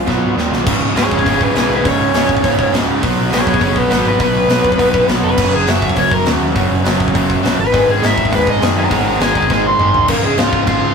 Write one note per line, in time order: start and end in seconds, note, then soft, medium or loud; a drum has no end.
0.00 0.34 F4 medium
0.00 0.34 F5 loud
0.07 0.21 B1 medium
0.07 0.36 B2 medium
0.07 0.36 F#3 medium
0.07 0.37 B3 medium
0.07 kick loud
0.07 snare medium
0.22 0.35 C#1 medium
0.37 0.50 D#1 medium
0.37 0.65 D#2 medium
0.37 0.66 A#2 loud
0.37 0.66 D#3 loud
0.37 snare medium
0.52 0.65 B1 medium
0.52 snare medium
0.66 0.77 C#1 loud
0.66 0.96 C#2 medium
0.66 0.95 G#2 loud
0.66 0.95 C#3 loud
0.66 kick loud
0.66 crash loud
0.81 0.91 C#1 medium
0.96 1.06 C#1 loud
0.96 1.25 C#2 medium
0.96 1.25 G#2 medium
0.96 1.26 C#3 medium
0.96 1.11 G#4 medium
0.96 1.11 C#5 loud
0.96 snare loud
0.96 open hi-hat medium
1.11 1.21 C#1 medium
1.11 1.26 G#4 medium
1.11 1.26 C#5 medium
1.11 kick loud
1.19 kick medium
1.26 1.36 G#1 loud
1.26 1.55 C#2 medium
1.26 1.55 G#2 loud
1.26 1.54 C#3 loud
1.26 1.41 G#4 medium
1.26 1.42 C#5 medium
1.26 kick loud
1.26 open hi-hat medium
1.41 1.51 C#1 medium
1.41 1.55 G#4 medium
1.41 1.56 B4 medium
1.41 kick loud
1.55 1.65 B1 loud
1.55 1.83 C#2 medium
1.55 1.84 G#2 medium
1.55 1.84 C#3 loud
1.55 snare loud
1.55 open hi-hat medium
1.59 1.71 G#4 medium
1.59 1.72 B4 loud
1.70 1.80 B1 loud
1.74 1.86 G#4 medium
1.74 1.87 B4 medium
1.84 1.95 C#1 loud
1.84 2.14 C#2 loud
1.84 2.13 G#2 loud
1.84 2.13 C#3 loud
1.84 kick loud
1.84 open hi-hat medium
1.88 2.72 C#5 loud
2.00 2.09 C#1 medium
2.14 2.24 C#1 loud
2.14 2.42 C#2 medium
2.14 2.43 G#2 medium
2.14 2.43 C#3 medium
2.14 snare loud
2.14 open hi-hat medium
2.29 2.39 C#1 loud
2.29 kick medium
2.37 kick medium
2.43 2.64 C#1 loud
2.43 2.73 C#2 medium
2.43 2.72 G#2 loud
2.43 2.71 C#3 loud
2.43 kick loud
2.43 open hi-hat medium
2.59 kick medium
2.73 2.83 C#1 medium
2.73 3.01 C#2 medium
2.73 3.02 G#2 medium
2.73 3.01 C#3 loud
2.73 snare loud
2.73 open hi-hat medium
2.87 2.97 C#1 loud
3.02 3.13 B1 loud
3.02 3.32 B2 loud
3.02 3.32 F#3 loud
3.02 3.31 B3 loud
3.02 kick loud
3.02 open hi-hat medium
3.17 3.27 B1 medium
3.31 3.41 B1 loud
3.31 3.59 B2 medium
3.31 3.60 F#3 medium
3.31 3.60 B3 medium
3.31 3.46 G#4 medium
3.31 3.47 C#5 loud
3.31 snare loud
3.31 open hi-hat medium
3.47 3.57 B1 loud
3.47 3.61 G#4 medium
3.47 3.62 C#5 medium
3.47 kick medium
3.54 kick medium
3.60 3.71 F#1 medium
3.60 3.90 B2 medium
3.60 3.90 F#3 loud
3.60 3.89 B3 loud
3.60 3.77 G#4 medium
3.60 3.78 C#5 medium
3.60 kick medium
3.60 open hi-hat medium
3.76 3.86 B1 medium
3.76 3.89 F#4 medium
3.76 3.90 B4 medium
3.76 kick medium
3.90 4.00 G#1 medium
3.90 4.18 B2 medium
3.90 4.19 F#3 loud
3.90 4.19 B3 loud
3.90 4.04 F#4 medium
3.90 4.05 B4 medium
3.90 snare loud
3.90 open hi-hat medium
4.05 4.15 G#1 loud
4.05 4.20 F#4 medium
4.05 4.21 B4 medium
4.19 4.30 B1 loud
4.19 4.48 B2 loud
4.19 4.49 F#3 loud
4.19 4.47 B3 loud
4.19 5.07 B4 loud
4.19 kick loud
4.19 open hi-hat medium
4.35 4.45 B1 medium
4.48 4.59 B1 loud
4.48 4.77 B2 medium
4.48 4.78 F#3 medium
4.48 4.78 B3 medium
4.48 snare loud
4.48 open hi-hat medium
4.64 4.74 B1 loud
4.64 kick medium
4.72 kick medium
4.78 4.99 B1 medium
4.78 5.08 B2 loud
4.78 5.08 F#3 loud
4.78 5.07 B3 loud
4.78 kick loud
4.78 open hi-hat medium
4.94 kick loud
5.08 5.19 B1 medium
5.08 5.37 B2 medium
5.08 5.38 F#3 loud
5.08 5.37 B3 loud
5.08 snare loud
5.08 open hi-hat medium
5.23 5.33 F1 medium
5.23 5.52 B4 loud
5.38 5.48 F#1 loud
5.38 5.67 F#2 loud
5.38 5.66 C#3 loud
5.38 5.66 F#3 loud
5.38 kick loud
5.38 crash loud
5.53 5.63 F#1 medium
5.53 5.68 G#4 loud
5.67 5.77 F#1 loud
5.67 5.96 F#2 medium
5.67 5.96 C#3 medium
5.67 5.97 F#3 medium
5.67 5.97 E5 loud
5.67 snare loud
5.67 open hi-hat medium
5.82 5.92 F#1 loud
5.82 kick medium
5.90 kick medium
5.96 6.07 C#2 loud
5.96 6.26 F#2 medium
5.96 6.25 C#3 medium
5.96 6.25 F#3 loud
5.96 6.12 C#5 medium
5.96 kick loud
5.96 open hi-hat medium
6.11 6.22 F#1 medium
6.11 6.26 A#4 loud
6.11 kick loud
6.26 6.36 D#2 medium
6.26 6.54 F#2 medium
6.26 6.54 C#3 loud
6.26 6.54 F#3 loud
6.26 snare loud
6.26 open hi-hat medium
6.40 6.50 D#2 loud
6.55 6.66 F#1 loud
6.55 6.84 F#2 loud
6.55 6.83 C#3 loud
6.55 6.83 F#3 loud
6.55 kick loud
6.55 open hi-hat medium
6.70 6.80 F#1 medium
6.84 6.95 F#1 loud
6.84 7.13 F#2 medium
6.84 7.13 C#3 medium
6.84 7.14 F#3 loud
6.84 snare loud
6.84 open hi-hat medium
7.00 7.10 F#1 medium
7.00 kick medium
7.08 kick medium
7.14 7.35 F#1 loud
7.14 7.44 F#2 medium
7.14 7.44 C#3 loud
7.14 7.43 F#3 loud
7.14 kick loud
7.14 open hi-hat medium
7.30 kick loud
7.44 7.54 A#1 medium
7.44 7.58 F#2 medium
7.44 7.58 C#3 medium
7.44 7.58 F#3 loud
7.44 snare loud
7.44 open hi-hat medium
7.59 7.69 G#1 medium
7.59 7.88 B4 medium
7.74 7.84 G#1 loud
7.74 8.03 G#2 loud
7.74 8.02 D#3 loud
7.74 8.03 G#3 loud
7.74 kick loud
7.74 open hi-hat medium
7.88 7.98 G#1 medium
7.88 8.04 G#4 medium
8.02 8.12 G#1 loud
8.02 8.31 G#2 medium
8.02 8.31 D#3 medium
8.02 8.32 G#3 loud
8.02 8.33 E5 loud
8.02 snare loud
8.02 open hi-hat medium
8.18 8.27 G#1 loud
8.18 kick medium
8.25 kick medium
8.32 8.42 D#2 loud
8.32 8.61 G#2 loud
8.32 8.60 D#3 loud
8.32 8.61 G#3 loud
8.32 8.48 B4 loud
8.32 kick loud
8.32 open hi-hat medium
8.47 8.57 G#1 medium
8.47 8.63 D#5 loud
8.47 kick loud
8.61 8.71 F#2 medium
8.61 8.90 G#2 medium
8.61 8.91 D#3 loud
8.61 8.91 G#3 loud
8.61 snare loud
8.61 open hi-hat medium
8.75 8.86 F#2 loud
8.75 8.92 F#5 medium
8.75 8.92 A#5 loud
8.91 9.01 G#1 loud
8.91 9.21 G#2 loud
8.91 9.20 D#3 loud
8.91 9.19 G#3 loud
8.91 9.06 F#5 loud
8.91 9.06 A#5 medium
8.91 kick loud
8.91 open hi-hat medium
9.05 9.15 G#1 medium
9.05 9.20 F#5 medium
9.09 9.22 A#5 medium
9.20 9.30 G#1 medium
9.20 9.49 G#2 medium
9.20 9.49 D#3 medium
9.20 9.50 G#3 medium
9.20 9.35 D#5 medium
9.20 9.35 G#5 loud
9.20 snare loud
9.20 open hi-hat medium
9.35 9.45 G#1 loud
9.35 9.49 D#5 medium
9.35 9.50 G#5 medium
9.35 kick medium
9.42 kick medium
9.50 9.70 G#1 loud
9.50 9.79 G#2 loud
9.50 9.78 D#3 loud
9.50 9.77 G#3 loud
9.50 9.65 D#5 loud
9.50 9.66 G#5 loud
9.50 kick loud
9.50 snare medium
9.67 10.09 C6 loud
9.78 9.89 G#1 medium
9.78 10.08 G#2 medium
9.78 10.08 D#3 medium
9.78 10.07 G#3 loud
9.78 mid tom medium
9.94 10.04 G#1 medium
9.94 floor tom medium
10.08 10.18 C#1 loud
10.08 10.38 C#2 loud
10.08 10.37 G#2 loud
10.08 10.38 C#3 loud
10.08 10.23 A#3 medium
10.08 10.24 A#4 loud
10.08 kick loud
10.08 crash loud
10.08 crash medium
10.23 10.33 C#1 medium
10.23 10.37 G#3 medium
10.23 10.37 G#4 medium
10.38 10.48 C#1 loud
10.38 10.65 C#2 medium
10.38 10.66 G#2 medium
10.38 10.66 C#3 medium
10.38 10.66 F4 medium
10.38 10.67 F5 loud
10.38 snare loud
10.38 crash medium
10.53 10.63 C#1 loud
10.53 kick loud
10.66 10.78 G#1 loud
10.66 10.95 C#2 loud
10.66 10.95 G#2 loud
10.66 10.95 C#3 loud
10.66 10.95 F4 medium
10.66 10.95 F5 loud
10.66 kick medium
10.66 crash medium
10.82 10.92 C#1 medium